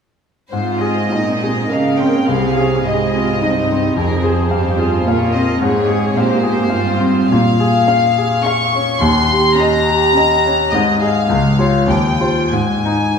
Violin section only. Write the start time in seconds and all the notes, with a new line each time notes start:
0.51 C5
0.81 D#5
1.71 F5
1.99 G5
2.26 F5
2.84 D#5
3.97 A#4
4.26 C5
5.07 C#5
5.34 D#5
5.62 C#5
6.16 C5
7.30 F5
8.45 C#6
9.01 C6
9.57 A#5
10.72 D#5
11.02 F5
11.89 G5
12.53 G#5